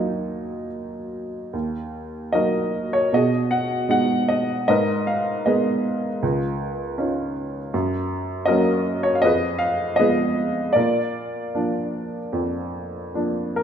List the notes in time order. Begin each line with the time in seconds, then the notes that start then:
Already playing: D#2 F#3 A#3 D#4 F#4 D#5
1.53 D#2
2.33 F#3 A#3 D#4 F#4 A#4 D#5
2.93 C#5
3.13 B2 F#4 G#4 D#5
3.51 F#5
3.89 G#3 B3 D#4 F#5
4.29 D#5
4.68 G#2 A#4 B4 D#5
5.07 F5
5.46 G#3 B3 G#4 A#4 B4 D#5
6.23 C#2
6.98 C#4 D#4 F4
7.74 F#2
8.46 F#3 A#3 C#4 F#4 A#4 D#5
9.03 C#5
9.15 F5
9.22 F2 G#4 B4 D#5
9.59 F5
9.96 F3 G#3 B3 G#4 B4 D#5
10.73 A#2 F4 A#4 D5
11.55 F3 A#3 D4
12.33 F2
13.14 F3 A#3 D4
13.56 A#4